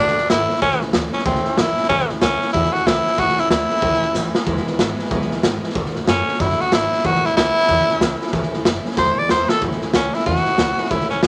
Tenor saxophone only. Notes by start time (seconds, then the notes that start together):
Already playing: D4
0.30 E4
0.62 C#4
1.14 C#4
1.26 C4
1.58 E4
1.89 C#4
2.21 C#4
2.53 E4
2.72 F#4
2.86 E4
3.19 F#4
3.39 E4
3.51 E4
6.08 C#4
6.40 E4
6.61 F#4
6.74 E4
7.05 F#4
7.25 E4
7.37 E4
8.98 C5
9.18 D5
9.31 C5
9.49 A4
9.95 C#4
10.14 E4
10.26 F#4
10.91 E4
11.10 C#4
11.23 B3